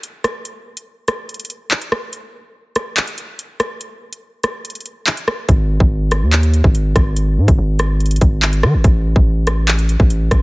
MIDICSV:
0, 0, Header, 1, 3, 480
1, 0, Start_track
1, 0, Tempo, 419580
1, 517, Time_signature, 4, 2, 24, 8
1, 11924, End_track
2, 0, Start_track
2, 0, Title_t, "808-style bass"
2, 0, Program_c, 0, 38
2, 6277, Note_on_c, 0, 32, 118
2, 6623, Note_off_c, 0, 32, 0
2, 6638, Note_on_c, 0, 32, 107
2, 7118, Note_on_c, 0, 39, 101
2, 7135, Note_off_c, 0, 32, 0
2, 7574, Note_off_c, 0, 39, 0
2, 7598, Note_on_c, 0, 32, 109
2, 7943, Note_off_c, 0, 32, 0
2, 7958, Note_on_c, 0, 32, 110
2, 8437, Note_on_c, 0, 44, 99
2, 8454, Note_off_c, 0, 32, 0
2, 8551, Note_off_c, 0, 44, 0
2, 8558, Note_on_c, 0, 32, 99
2, 8670, Note_off_c, 0, 32, 0
2, 8677, Note_on_c, 0, 32, 107
2, 9368, Note_off_c, 0, 32, 0
2, 9397, Note_on_c, 0, 32, 105
2, 9878, Note_on_c, 0, 51, 101
2, 9895, Note_off_c, 0, 32, 0
2, 9998, Note_on_c, 0, 32, 98
2, 10015, Note_off_c, 0, 51, 0
2, 10112, Note_off_c, 0, 32, 0
2, 10117, Note_on_c, 0, 33, 112
2, 10463, Note_off_c, 0, 33, 0
2, 10478, Note_on_c, 0, 33, 100
2, 11399, Note_off_c, 0, 33, 0
2, 11437, Note_on_c, 0, 33, 105
2, 11783, Note_off_c, 0, 33, 0
2, 11797, Note_on_c, 0, 33, 110
2, 11924, Note_off_c, 0, 33, 0
2, 11924, End_track
3, 0, Start_track
3, 0, Title_t, "Drums"
3, 39, Note_on_c, 9, 42, 86
3, 153, Note_off_c, 9, 42, 0
3, 278, Note_on_c, 9, 37, 97
3, 279, Note_on_c, 9, 42, 82
3, 393, Note_off_c, 9, 37, 0
3, 393, Note_off_c, 9, 42, 0
3, 517, Note_on_c, 9, 42, 84
3, 631, Note_off_c, 9, 42, 0
3, 880, Note_on_c, 9, 42, 77
3, 994, Note_off_c, 9, 42, 0
3, 1234, Note_on_c, 9, 42, 73
3, 1238, Note_on_c, 9, 37, 93
3, 1348, Note_off_c, 9, 42, 0
3, 1352, Note_off_c, 9, 37, 0
3, 1477, Note_on_c, 9, 42, 49
3, 1537, Note_off_c, 9, 42, 0
3, 1537, Note_on_c, 9, 42, 58
3, 1597, Note_off_c, 9, 42, 0
3, 1597, Note_on_c, 9, 42, 72
3, 1657, Note_off_c, 9, 42, 0
3, 1657, Note_on_c, 9, 42, 81
3, 1716, Note_off_c, 9, 42, 0
3, 1716, Note_on_c, 9, 42, 74
3, 1830, Note_off_c, 9, 42, 0
3, 1956, Note_on_c, 9, 39, 117
3, 2071, Note_off_c, 9, 39, 0
3, 2077, Note_on_c, 9, 42, 74
3, 2191, Note_off_c, 9, 42, 0
3, 2197, Note_on_c, 9, 37, 97
3, 2311, Note_off_c, 9, 37, 0
3, 2435, Note_on_c, 9, 42, 83
3, 2550, Note_off_c, 9, 42, 0
3, 3153, Note_on_c, 9, 42, 74
3, 3157, Note_on_c, 9, 37, 92
3, 3267, Note_off_c, 9, 42, 0
3, 3272, Note_off_c, 9, 37, 0
3, 3397, Note_on_c, 9, 39, 115
3, 3397, Note_on_c, 9, 42, 64
3, 3512, Note_off_c, 9, 39, 0
3, 3512, Note_off_c, 9, 42, 0
3, 3517, Note_on_c, 9, 42, 67
3, 3632, Note_off_c, 9, 42, 0
3, 3636, Note_on_c, 9, 42, 73
3, 3750, Note_off_c, 9, 42, 0
3, 3879, Note_on_c, 9, 42, 86
3, 3993, Note_off_c, 9, 42, 0
3, 4117, Note_on_c, 9, 37, 96
3, 4118, Note_on_c, 9, 42, 83
3, 4232, Note_off_c, 9, 37, 0
3, 4232, Note_off_c, 9, 42, 0
3, 4356, Note_on_c, 9, 42, 86
3, 4470, Note_off_c, 9, 42, 0
3, 4720, Note_on_c, 9, 42, 77
3, 4834, Note_off_c, 9, 42, 0
3, 5074, Note_on_c, 9, 42, 76
3, 5078, Note_on_c, 9, 37, 93
3, 5188, Note_off_c, 9, 42, 0
3, 5192, Note_off_c, 9, 37, 0
3, 5317, Note_on_c, 9, 42, 75
3, 5377, Note_off_c, 9, 42, 0
3, 5377, Note_on_c, 9, 42, 68
3, 5437, Note_off_c, 9, 42, 0
3, 5437, Note_on_c, 9, 42, 57
3, 5497, Note_off_c, 9, 42, 0
3, 5497, Note_on_c, 9, 42, 46
3, 5556, Note_off_c, 9, 42, 0
3, 5556, Note_on_c, 9, 42, 73
3, 5670, Note_off_c, 9, 42, 0
3, 5797, Note_on_c, 9, 39, 118
3, 5911, Note_off_c, 9, 39, 0
3, 5917, Note_on_c, 9, 42, 74
3, 6032, Note_off_c, 9, 42, 0
3, 6037, Note_on_c, 9, 37, 96
3, 6151, Note_off_c, 9, 37, 0
3, 6276, Note_on_c, 9, 42, 84
3, 6277, Note_on_c, 9, 36, 114
3, 6391, Note_off_c, 9, 42, 0
3, 6392, Note_off_c, 9, 36, 0
3, 6638, Note_on_c, 9, 36, 98
3, 6752, Note_off_c, 9, 36, 0
3, 6994, Note_on_c, 9, 42, 77
3, 6998, Note_on_c, 9, 37, 93
3, 7108, Note_off_c, 9, 42, 0
3, 7112, Note_off_c, 9, 37, 0
3, 7237, Note_on_c, 9, 39, 122
3, 7238, Note_on_c, 9, 42, 65
3, 7352, Note_off_c, 9, 39, 0
3, 7352, Note_off_c, 9, 42, 0
3, 7358, Note_on_c, 9, 42, 65
3, 7472, Note_off_c, 9, 42, 0
3, 7477, Note_on_c, 9, 42, 72
3, 7591, Note_off_c, 9, 42, 0
3, 7598, Note_on_c, 9, 36, 96
3, 7712, Note_off_c, 9, 36, 0
3, 7719, Note_on_c, 9, 42, 87
3, 7834, Note_off_c, 9, 42, 0
3, 7958, Note_on_c, 9, 36, 98
3, 7958, Note_on_c, 9, 37, 95
3, 7959, Note_on_c, 9, 42, 82
3, 8072, Note_off_c, 9, 36, 0
3, 8073, Note_off_c, 9, 37, 0
3, 8073, Note_off_c, 9, 42, 0
3, 8197, Note_on_c, 9, 42, 85
3, 8311, Note_off_c, 9, 42, 0
3, 8558, Note_on_c, 9, 36, 96
3, 8559, Note_on_c, 9, 42, 78
3, 8673, Note_off_c, 9, 36, 0
3, 8674, Note_off_c, 9, 42, 0
3, 8913, Note_on_c, 9, 42, 72
3, 8918, Note_on_c, 9, 37, 92
3, 9028, Note_off_c, 9, 42, 0
3, 9032, Note_off_c, 9, 37, 0
3, 9157, Note_on_c, 9, 42, 47
3, 9217, Note_off_c, 9, 42, 0
3, 9217, Note_on_c, 9, 42, 57
3, 9277, Note_off_c, 9, 42, 0
3, 9277, Note_on_c, 9, 42, 71
3, 9337, Note_off_c, 9, 42, 0
3, 9337, Note_on_c, 9, 42, 81
3, 9395, Note_off_c, 9, 42, 0
3, 9395, Note_on_c, 9, 42, 75
3, 9397, Note_on_c, 9, 36, 95
3, 9510, Note_off_c, 9, 42, 0
3, 9511, Note_off_c, 9, 36, 0
3, 9636, Note_on_c, 9, 39, 118
3, 9751, Note_off_c, 9, 39, 0
3, 9757, Note_on_c, 9, 42, 75
3, 9871, Note_off_c, 9, 42, 0
3, 9876, Note_on_c, 9, 37, 96
3, 9991, Note_off_c, 9, 37, 0
3, 10115, Note_on_c, 9, 42, 82
3, 10117, Note_on_c, 9, 36, 119
3, 10229, Note_off_c, 9, 42, 0
3, 10231, Note_off_c, 9, 36, 0
3, 10478, Note_on_c, 9, 36, 93
3, 10592, Note_off_c, 9, 36, 0
3, 10833, Note_on_c, 9, 42, 75
3, 10837, Note_on_c, 9, 37, 94
3, 10947, Note_off_c, 9, 42, 0
3, 10951, Note_off_c, 9, 37, 0
3, 11076, Note_on_c, 9, 39, 118
3, 11077, Note_on_c, 9, 42, 66
3, 11191, Note_off_c, 9, 39, 0
3, 11191, Note_off_c, 9, 42, 0
3, 11197, Note_on_c, 9, 42, 68
3, 11311, Note_off_c, 9, 42, 0
3, 11315, Note_on_c, 9, 42, 74
3, 11430, Note_off_c, 9, 42, 0
3, 11437, Note_on_c, 9, 36, 97
3, 11552, Note_off_c, 9, 36, 0
3, 11558, Note_on_c, 9, 42, 86
3, 11672, Note_off_c, 9, 42, 0
3, 11797, Note_on_c, 9, 36, 96
3, 11797, Note_on_c, 9, 37, 97
3, 11797, Note_on_c, 9, 42, 80
3, 11911, Note_off_c, 9, 36, 0
3, 11911, Note_off_c, 9, 37, 0
3, 11912, Note_off_c, 9, 42, 0
3, 11924, End_track
0, 0, End_of_file